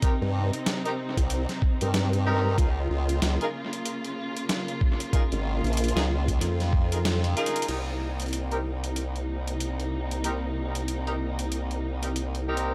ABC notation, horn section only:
X:1
M:4/4
L:1/16
Q:"Swing 16ths" 1/4=94
K:Cphr
V:1 name="Horn section"
[CEGB] z4 [CEGB] z4 z [CEGB] z2 [CEGB]2 | [EFAB] z4 [EFAB] z8 z2 | [EFAB] z4 [EFAB] z4 z [EFAB] z2 [EFAB]2 | [CEGB] z4 [CEGB] z8 z2 |
[CEGB] z4 [CEGB] z4 z [CEGB] z2 [CEGB]2 |]